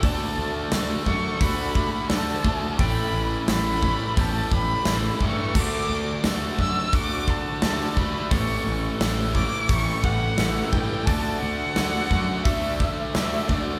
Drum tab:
CC |----------------|----------------|x---------------|----------------|
HH |o---o---o---o---|o---o---o---o---|----o---o---o---|o---o---o---o---|
SD |----o-------oo--|----o-------oo--|----o-------oo--|----o-------oo--|
BD |o-----o-o-o---o-|o-----o-o-o---o-|o-----o-o-o---o-|o-----o-o-o---o-|

CC |----------------|
HH |o---o---o---o---|
SD |----o-------oo--|
BD |o-----o-o-o---o-|